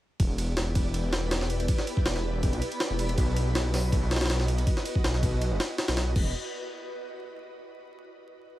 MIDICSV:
0, 0, Header, 1, 5, 480
1, 0, Start_track
1, 0, Key_signature, 1, "minor"
1, 0, Tempo, 372671
1, 251, Time_signature, 4, 2, 24, 8
1, 11064, End_track
2, 0, Start_track
2, 0, Title_t, "Ambient pad"
2, 0, Program_c, 0, 92
2, 248, Note_on_c, 0, 74, 92
2, 249, Note_on_c, 0, 64, 78
2, 249, Note_on_c, 0, 67, 73
2, 250, Note_on_c, 0, 71, 74
2, 1422, Note_off_c, 0, 74, 0
2, 1423, Note_off_c, 0, 64, 0
2, 1423, Note_off_c, 0, 67, 0
2, 1423, Note_off_c, 0, 71, 0
2, 2162, Note_on_c, 0, 64, 86
2, 2163, Note_on_c, 0, 67, 81
2, 2163, Note_on_c, 0, 71, 78
2, 2164, Note_on_c, 0, 74, 98
2, 3339, Note_off_c, 0, 64, 0
2, 3340, Note_off_c, 0, 67, 0
2, 3340, Note_off_c, 0, 71, 0
2, 3341, Note_off_c, 0, 74, 0
2, 4086, Note_on_c, 0, 66, 80
2, 4086, Note_on_c, 0, 71, 72
2, 4090, Note_on_c, 0, 75, 89
2, 5262, Note_off_c, 0, 66, 0
2, 5262, Note_off_c, 0, 71, 0
2, 5263, Note_off_c, 0, 75, 0
2, 6006, Note_on_c, 0, 71, 79
2, 6007, Note_on_c, 0, 75, 95
2, 6009, Note_on_c, 0, 66, 91
2, 7182, Note_off_c, 0, 71, 0
2, 7182, Note_off_c, 0, 75, 0
2, 7183, Note_off_c, 0, 66, 0
2, 11064, End_track
3, 0, Start_track
3, 0, Title_t, "Synth texture"
3, 0, Program_c, 1, 99
3, 256, Note_on_c, 1, 83, 90
3, 257, Note_on_c, 1, 59, 91
3, 7944, Note_off_c, 1, 59, 0
3, 7944, Note_off_c, 1, 83, 0
3, 11064, End_track
4, 0, Start_track
4, 0, Title_t, "Detuned saw bass"
4, 0, Program_c, 2, 39
4, 253, Note_on_c, 2, 28, 96
4, 714, Note_off_c, 2, 28, 0
4, 731, Note_on_c, 2, 28, 91
4, 1193, Note_off_c, 2, 28, 0
4, 1209, Note_on_c, 2, 28, 100
4, 2152, Note_off_c, 2, 28, 0
4, 2646, Note_on_c, 2, 28, 91
4, 3255, Note_on_c, 2, 35, 109
4, 3274, Note_off_c, 2, 28, 0
4, 3358, Note_off_c, 2, 35, 0
4, 3738, Note_on_c, 2, 28, 87
4, 4073, Note_off_c, 2, 28, 0
4, 4092, Note_on_c, 2, 35, 95
4, 4553, Note_off_c, 2, 35, 0
4, 4566, Note_on_c, 2, 35, 89
4, 5030, Note_off_c, 2, 35, 0
4, 5054, Note_on_c, 2, 35, 99
4, 5994, Note_off_c, 2, 35, 0
4, 6490, Note_on_c, 2, 35, 89
4, 7097, Note_on_c, 2, 30, 109
4, 7117, Note_off_c, 2, 35, 0
4, 7199, Note_off_c, 2, 30, 0
4, 7578, Note_on_c, 2, 35, 87
4, 7913, Note_off_c, 2, 35, 0
4, 7932, Note_on_c, 2, 28, 96
4, 8155, Note_off_c, 2, 28, 0
4, 11064, End_track
5, 0, Start_track
5, 0, Title_t, "Drums"
5, 254, Note_on_c, 9, 36, 113
5, 254, Note_on_c, 9, 51, 89
5, 383, Note_off_c, 9, 36, 0
5, 383, Note_off_c, 9, 51, 0
5, 494, Note_on_c, 9, 51, 70
5, 623, Note_off_c, 9, 51, 0
5, 732, Note_on_c, 9, 38, 119
5, 732, Note_on_c, 9, 51, 89
5, 861, Note_off_c, 9, 38, 0
5, 861, Note_off_c, 9, 51, 0
5, 971, Note_on_c, 9, 51, 82
5, 973, Note_on_c, 9, 36, 98
5, 1099, Note_off_c, 9, 51, 0
5, 1101, Note_off_c, 9, 36, 0
5, 1212, Note_on_c, 9, 51, 61
5, 1341, Note_off_c, 9, 51, 0
5, 1451, Note_on_c, 9, 38, 103
5, 1451, Note_on_c, 9, 51, 78
5, 1579, Note_off_c, 9, 38, 0
5, 1579, Note_off_c, 9, 51, 0
5, 1690, Note_on_c, 9, 38, 122
5, 1690, Note_on_c, 9, 51, 90
5, 1819, Note_off_c, 9, 38, 0
5, 1819, Note_off_c, 9, 51, 0
5, 1820, Note_on_c, 9, 38, 54
5, 1930, Note_on_c, 9, 51, 70
5, 1948, Note_off_c, 9, 38, 0
5, 2059, Note_off_c, 9, 51, 0
5, 2059, Note_on_c, 9, 51, 45
5, 2167, Note_off_c, 9, 51, 0
5, 2167, Note_on_c, 9, 51, 90
5, 2170, Note_on_c, 9, 36, 113
5, 2296, Note_off_c, 9, 51, 0
5, 2298, Note_on_c, 9, 38, 48
5, 2299, Note_off_c, 9, 36, 0
5, 2411, Note_on_c, 9, 51, 71
5, 2427, Note_off_c, 9, 38, 0
5, 2537, Note_on_c, 9, 36, 97
5, 2539, Note_off_c, 9, 51, 0
5, 2648, Note_on_c, 9, 38, 121
5, 2648, Note_on_c, 9, 51, 90
5, 2666, Note_off_c, 9, 36, 0
5, 2777, Note_off_c, 9, 38, 0
5, 2777, Note_off_c, 9, 51, 0
5, 2779, Note_on_c, 9, 38, 43
5, 2908, Note_off_c, 9, 38, 0
5, 3130, Note_on_c, 9, 51, 87
5, 3131, Note_on_c, 9, 36, 110
5, 3259, Note_off_c, 9, 51, 0
5, 3259, Note_on_c, 9, 51, 45
5, 3260, Note_off_c, 9, 36, 0
5, 3372, Note_off_c, 9, 51, 0
5, 3372, Note_on_c, 9, 51, 72
5, 3499, Note_off_c, 9, 51, 0
5, 3499, Note_on_c, 9, 51, 44
5, 3609, Note_off_c, 9, 51, 0
5, 3609, Note_on_c, 9, 38, 119
5, 3609, Note_on_c, 9, 51, 93
5, 3738, Note_off_c, 9, 38, 0
5, 3738, Note_off_c, 9, 51, 0
5, 3851, Note_on_c, 9, 51, 68
5, 3980, Note_off_c, 9, 51, 0
5, 3981, Note_on_c, 9, 51, 45
5, 4092, Note_off_c, 9, 51, 0
5, 4092, Note_on_c, 9, 36, 111
5, 4092, Note_on_c, 9, 51, 89
5, 4221, Note_off_c, 9, 36, 0
5, 4221, Note_off_c, 9, 51, 0
5, 4333, Note_on_c, 9, 51, 73
5, 4462, Note_off_c, 9, 51, 0
5, 4575, Note_on_c, 9, 38, 117
5, 4575, Note_on_c, 9, 51, 91
5, 4704, Note_off_c, 9, 38, 0
5, 4704, Note_off_c, 9, 51, 0
5, 4814, Note_on_c, 9, 38, 54
5, 4814, Note_on_c, 9, 46, 81
5, 4943, Note_off_c, 9, 38, 0
5, 4943, Note_off_c, 9, 46, 0
5, 5054, Note_on_c, 9, 36, 110
5, 5057, Note_on_c, 9, 51, 90
5, 5183, Note_off_c, 9, 36, 0
5, 5186, Note_off_c, 9, 51, 0
5, 5295, Note_on_c, 9, 38, 90
5, 5295, Note_on_c, 9, 51, 68
5, 5362, Note_off_c, 9, 38, 0
5, 5362, Note_off_c, 9, 51, 0
5, 5362, Note_on_c, 9, 38, 89
5, 5362, Note_on_c, 9, 51, 70
5, 5423, Note_off_c, 9, 38, 0
5, 5423, Note_off_c, 9, 51, 0
5, 5423, Note_on_c, 9, 38, 88
5, 5423, Note_on_c, 9, 51, 69
5, 5481, Note_off_c, 9, 38, 0
5, 5481, Note_off_c, 9, 51, 0
5, 5481, Note_on_c, 9, 38, 89
5, 5481, Note_on_c, 9, 51, 70
5, 5537, Note_off_c, 9, 38, 0
5, 5537, Note_off_c, 9, 51, 0
5, 5537, Note_on_c, 9, 38, 119
5, 5537, Note_on_c, 9, 51, 91
5, 5664, Note_off_c, 9, 38, 0
5, 5664, Note_on_c, 9, 38, 53
5, 5666, Note_off_c, 9, 51, 0
5, 5775, Note_on_c, 9, 51, 67
5, 5793, Note_off_c, 9, 38, 0
5, 5904, Note_off_c, 9, 51, 0
5, 5904, Note_on_c, 9, 51, 46
5, 6014, Note_off_c, 9, 51, 0
5, 6014, Note_on_c, 9, 36, 111
5, 6014, Note_on_c, 9, 51, 88
5, 6142, Note_on_c, 9, 38, 50
5, 6143, Note_off_c, 9, 36, 0
5, 6143, Note_off_c, 9, 51, 0
5, 6253, Note_on_c, 9, 51, 71
5, 6271, Note_off_c, 9, 38, 0
5, 6381, Note_off_c, 9, 51, 0
5, 6381, Note_on_c, 9, 36, 96
5, 6496, Note_on_c, 9, 38, 118
5, 6496, Note_on_c, 9, 51, 88
5, 6510, Note_off_c, 9, 36, 0
5, 6622, Note_off_c, 9, 38, 0
5, 6622, Note_on_c, 9, 38, 43
5, 6624, Note_off_c, 9, 51, 0
5, 6734, Note_on_c, 9, 36, 99
5, 6735, Note_on_c, 9, 51, 81
5, 6751, Note_off_c, 9, 38, 0
5, 6863, Note_off_c, 9, 36, 0
5, 6864, Note_off_c, 9, 51, 0
5, 6974, Note_on_c, 9, 51, 62
5, 7103, Note_off_c, 9, 51, 0
5, 7212, Note_on_c, 9, 38, 105
5, 7212, Note_on_c, 9, 51, 79
5, 7341, Note_off_c, 9, 38, 0
5, 7341, Note_off_c, 9, 51, 0
5, 7449, Note_on_c, 9, 38, 107
5, 7449, Note_on_c, 9, 51, 84
5, 7576, Note_off_c, 9, 38, 0
5, 7576, Note_off_c, 9, 51, 0
5, 7576, Note_on_c, 9, 38, 105
5, 7576, Note_on_c, 9, 51, 82
5, 7689, Note_off_c, 9, 38, 0
5, 7689, Note_off_c, 9, 51, 0
5, 7689, Note_on_c, 9, 38, 106
5, 7689, Note_on_c, 9, 51, 80
5, 7818, Note_off_c, 9, 38, 0
5, 7818, Note_off_c, 9, 51, 0
5, 7932, Note_on_c, 9, 49, 89
5, 7933, Note_on_c, 9, 36, 114
5, 8061, Note_off_c, 9, 49, 0
5, 8062, Note_off_c, 9, 36, 0
5, 11064, End_track
0, 0, End_of_file